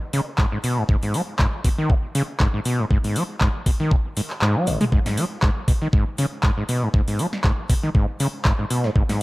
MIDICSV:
0, 0, Header, 1, 3, 480
1, 0, Start_track
1, 0, Key_signature, 5, "minor"
1, 0, Tempo, 504202
1, 846, Time_signature, 4, 2, 24, 8
1, 8783, End_track
2, 0, Start_track
2, 0, Title_t, "Acid bass"
2, 0, Program_c, 0, 38
2, 126, Note_on_c, 0, 49, 101
2, 198, Note_off_c, 0, 49, 0
2, 367, Note_on_c, 0, 44, 97
2, 438, Note_off_c, 0, 44, 0
2, 497, Note_on_c, 0, 44, 72
2, 557, Note_off_c, 0, 44, 0
2, 607, Note_on_c, 0, 47, 74
2, 737, Note_on_c, 0, 44, 80
2, 751, Note_off_c, 0, 47, 0
2, 797, Note_off_c, 0, 44, 0
2, 846, Note_on_c, 0, 44, 97
2, 918, Note_off_c, 0, 44, 0
2, 977, Note_on_c, 0, 44, 75
2, 1087, Note_on_c, 0, 54, 73
2, 1101, Note_off_c, 0, 44, 0
2, 1158, Note_off_c, 0, 54, 0
2, 1326, Note_on_c, 0, 44, 99
2, 1398, Note_off_c, 0, 44, 0
2, 1567, Note_on_c, 0, 47, 71
2, 1610, Note_off_c, 0, 47, 0
2, 1697, Note_on_c, 0, 51, 96
2, 1807, Note_on_c, 0, 44, 83
2, 1821, Note_off_c, 0, 51, 0
2, 1850, Note_off_c, 0, 44, 0
2, 2047, Note_on_c, 0, 49, 103
2, 2118, Note_off_c, 0, 49, 0
2, 2287, Note_on_c, 0, 44, 101
2, 2358, Note_off_c, 0, 44, 0
2, 2418, Note_on_c, 0, 44, 73
2, 2477, Note_off_c, 0, 44, 0
2, 2526, Note_on_c, 0, 47, 75
2, 2657, Note_on_c, 0, 44, 78
2, 2672, Note_off_c, 0, 47, 0
2, 2717, Note_off_c, 0, 44, 0
2, 2766, Note_on_c, 0, 44, 95
2, 2838, Note_off_c, 0, 44, 0
2, 2897, Note_on_c, 0, 44, 75
2, 3007, Note_on_c, 0, 54, 75
2, 3021, Note_off_c, 0, 44, 0
2, 3079, Note_off_c, 0, 54, 0
2, 3247, Note_on_c, 0, 44, 97
2, 3318, Note_off_c, 0, 44, 0
2, 3487, Note_on_c, 0, 47, 74
2, 3530, Note_off_c, 0, 47, 0
2, 3617, Note_on_c, 0, 51, 99
2, 3727, Note_on_c, 0, 44, 79
2, 3741, Note_off_c, 0, 51, 0
2, 3770, Note_off_c, 0, 44, 0
2, 3966, Note_on_c, 0, 44, 80
2, 4010, Note_off_c, 0, 44, 0
2, 4207, Note_on_c, 0, 44, 100
2, 4338, Note_on_c, 0, 54, 72
2, 4352, Note_off_c, 0, 44, 0
2, 4448, Note_on_c, 0, 32, 73
2, 4462, Note_off_c, 0, 54, 0
2, 4555, Note_off_c, 0, 32, 0
2, 4577, Note_on_c, 0, 56, 103
2, 4613, Note_off_c, 0, 56, 0
2, 4686, Note_on_c, 0, 44, 100
2, 4758, Note_off_c, 0, 44, 0
2, 4817, Note_on_c, 0, 44, 76
2, 4927, Note_on_c, 0, 54, 74
2, 4941, Note_off_c, 0, 44, 0
2, 4998, Note_off_c, 0, 54, 0
2, 5166, Note_on_c, 0, 44, 97
2, 5238, Note_off_c, 0, 44, 0
2, 5406, Note_on_c, 0, 47, 73
2, 5450, Note_off_c, 0, 47, 0
2, 5537, Note_on_c, 0, 51, 97
2, 5597, Note_off_c, 0, 51, 0
2, 5646, Note_on_c, 0, 44, 101
2, 5754, Note_off_c, 0, 44, 0
2, 5887, Note_on_c, 0, 49, 105
2, 5959, Note_off_c, 0, 49, 0
2, 6126, Note_on_c, 0, 44, 98
2, 6198, Note_off_c, 0, 44, 0
2, 6258, Note_on_c, 0, 44, 74
2, 6318, Note_off_c, 0, 44, 0
2, 6367, Note_on_c, 0, 47, 77
2, 6498, Note_on_c, 0, 44, 81
2, 6512, Note_off_c, 0, 47, 0
2, 6558, Note_off_c, 0, 44, 0
2, 6606, Note_on_c, 0, 44, 98
2, 6678, Note_off_c, 0, 44, 0
2, 6738, Note_on_c, 0, 44, 78
2, 6847, Note_on_c, 0, 54, 74
2, 6861, Note_off_c, 0, 44, 0
2, 6918, Note_off_c, 0, 54, 0
2, 7086, Note_on_c, 0, 44, 99
2, 7158, Note_off_c, 0, 44, 0
2, 7326, Note_on_c, 0, 47, 73
2, 7370, Note_off_c, 0, 47, 0
2, 7457, Note_on_c, 0, 51, 100
2, 7517, Note_off_c, 0, 51, 0
2, 7567, Note_on_c, 0, 44, 99
2, 7674, Note_off_c, 0, 44, 0
2, 7806, Note_on_c, 0, 49, 103
2, 7878, Note_off_c, 0, 49, 0
2, 8047, Note_on_c, 0, 44, 100
2, 8118, Note_off_c, 0, 44, 0
2, 8178, Note_on_c, 0, 44, 73
2, 8238, Note_off_c, 0, 44, 0
2, 8287, Note_on_c, 0, 47, 77
2, 8417, Note_on_c, 0, 44, 77
2, 8431, Note_off_c, 0, 47, 0
2, 8477, Note_off_c, 0, 44, 0
2, 8526, Note_on_c, 0, 44, 97
2, 8598, Note_off_c, 0, 44, 0
2, 8656, Note_on_c, 0, 44, 78
2, 8781, Note_off_c, 0, 44, 0
2, 8783, End_track
3, 0, Start_track
3, 0, Title_t, "Drums"
3, 126, Note_on_c, 9, 46, 96
3, 221, Note_off_c, 9, 46, 0
3, 364, Note_on_c, 9, 39, 111
3, 366, Note_on_c, 9, 36, 110
3, 459, Note_off_c, 9, 39, 0
3, 461, Note_off_c, 9, 36, 0
3, 606, Note_on_c, 9, 46, 97
3, 702, Note_off_c, 9, 46, 0
3, 846, Note_on_c, 9, 36, 110
3, 941, Note_off_c, 9, 36, 0
3, 977, Note_on_c, 9, 46, 55
3, 1072, Note_off_c, 9, 46, 0
3, 1086, Note_on_c, 9, 46, 97
3, 1181, Note_off_c, 9, 46, 0
3, 1324, Note_on_c, 9, 39, 111
3, 1326, Note_on_c, 9, 36, 108
3, 1419, Note_off_c, 9, 39, 0
3, 1421, Note_off_c, 9, 36, 0
3, 1566, Note_on_c, 9, 36, 76
3, 1566, Note_on_c, 9, 46, 93
3, 1661, Note_off_c, 9, 36, 0
3, 1661, Note_off_c, 9, 46, 0
3, 1806, Note_on_c, 9, 36, 106
3, 1901, Note_off_c, 9, 36, 0
3, 2046, Note_on_c, 9, 46, 96
3, 2141, Note_off_c, 9, 46, 0
3, 2284, Note_on_c, 9, 39, 112
3, 2286, Note_on_c, 9, 36, 108
3, 2379, Note_off_c, 9, 39, 0
3, 2381, Note_off_c, 9, 36, 0
3, 2527, Note_on_c, 9, 46, 97
3, 2622, Note_off_c, 9, 46, 0
3, 2766, Note_on_c, 9, 36, 107
3, 2862, Note_off_c, 9, 36, 0
3, 2897, Note_on_c, 9, 46, 57
3, 2992, Note_off_c, 9, 46, 0
3, 3006, Note_on_c, 9, 46, 102
3, 3102, Note_off_c, 9, 46, 0
3, 3243, Note_on_c, 9, 39, 116
3, 3246, Note_on_c, 9, 36, 106
3, 3339, Note_off_c, 9, 39, 0
3, 3342, Note_off_c, 9, 36, 0
3, 3486, Note_on_c, 9, 36, 77
3, 3486, Note_on_c, 9, 46, 94
3, 3581, Note_off_c, 9, 46, 0
3, 3582, Note_off_c, 9, 36, 0
3, 3726, Note_on_c, 9, 36, 111
3, 3821, Note_off_c, 9, 36, 0
3, 3967, Note_on_c, 9, 46, 99
3, 4062, Note_off_c, 9, 46, 0
3, 4095, Note_on_c, 9, 39, 37
3, 4190, Note_off_c, 9, 39, 0
3, 4204, Note_on_c, 9, 39, 116
3, 4299, Note_off_c, 9, 39, 0
3, 4447, Note_on_c, 9, 46, 99
3, 4447, Note_on_c, 9, 48, 61
3, 4542, Note_off_c, 9, 46, 0
3, 4542, Note_off_c, 9, 48, 0
3, 4577, Note_on_c, 9, 46, 57
3, 4577, Note_on_c, 9, 47, 68
3, 4672, Note_off_c, 9, 46, 0
3, 4672, Note_off_c, 9, 47, 0
3, 4686, Note_on_c, 9, 36, 114
3, 4781, Note_off_c, 9, 36, 0
3, 4817, Note_on_c, 9, 38, 59
3, 4817, Note_on_c, 9, 46, 59
3, 4912, Note_off_c, 9, 38, 0
3, 4912, Note_off_c, 9, 46, 0
3, 4926, Note_on_c, 9, 46, 106
3, 5021, Note_off_c, 9, 46, 0
3, 5164, Note_on_c, 9, 39, 120
3, 5166, Note_on_c, 9, 36, 113
3, 5259, Note_off_c, 9, 39, 0
3, 5261, Note_off_c, 9, 36, 0
3, 5406, Note_on_c, 9, 36, 77
3, 5406, Note_on_c, 9, 46, 100
3, 5501, Note_off_c, 9, 36, 0
3, 5502, Note_off_c, 9, 46, 0
3, 5646, Note_on_c, 9, 36, 117
3, 5741, Note_off_c, 9, 36, 0
3, 5886, Note_on_c, 9, 46, 101
3, 5981, Note_off_c, 9, 46, 0
3, 6123, Note_on_c, 9, 39, 116
3, 6126, Note_on_c, 9, 36, 117
3, 6219, Note_off_c, 9, 39, 0
3, 6221, Note_off_c, 9, 36, 0
3, 6366, Note_on_c, 9, 46, 103
3, 6461, Note_off_c, 9, 46, 0
3, 6606, Note_on_c, 9, 36, 118
3, 6701, Note_off_c, 9, 36, 0
3, 6737, Note_on_c, 9, 46, 61
3, 6832, Note_off_c, 9, 46, 0
3, 6846, Note_on_c, 9, 46, 108
3, 6941, Note_off_c, 9, 46, 0
3, 6977, Note_on_c, 9, 38, 57
3, 7072, Note_off_c, 9, 38, 0
3, 7084, Note_on_c, 9, 39, 120
3, 7086, Note_on_c, 9, 36, 118
3, 7179, Note_off_c, 9, 39, 0
3, 7181, Note_off_c, 9, 36, 0
3, 7326, Note_on_c, 9, 36, 82
3, 7326, Note_on_c, 9, 46, 100
3, 7421, Note_off_c, 9, 36, 0
3, 7421, Note_off_c, 9, 46, 0
3, 7566, Note_on_c, 9, 36, 119
3, 7661, Note_off_c, 9, 36, 0
3, 7806, Note_on_c, 9, 46, 106
3, 7902, Note_off_c, 9, 46, 0
3, 8044, Note_on_c, 9, 39, 123
3, 8046, Note_on_c, 9, 36, 115
3, 8139, Note_off_c, 9, 39, 0
3, 8141, Note_off_c, 9, 36, 0
3, 8287, Note_on_c, 9, 46, 108
3, 8382, Note_off_c, 9, 46, 0
3, 8417, Note_on_c, 9, 38, 34
3, 8512, Note_off_c, 9, 38, 0
3, 8526, Note_on_c, 9, 36, 120
3, 8621, Note_off_c, 9, 36, 0
3, 8657, Note_on_c, 9, 38, 57
3, 8657, Note_on_c, 9, 46, 62
3, 8752, Note_off_c, 9, 38, 0
3, 8752, Note_off_c, 9, 46, 0
3, 8783, End_track
0, 0, End_of_file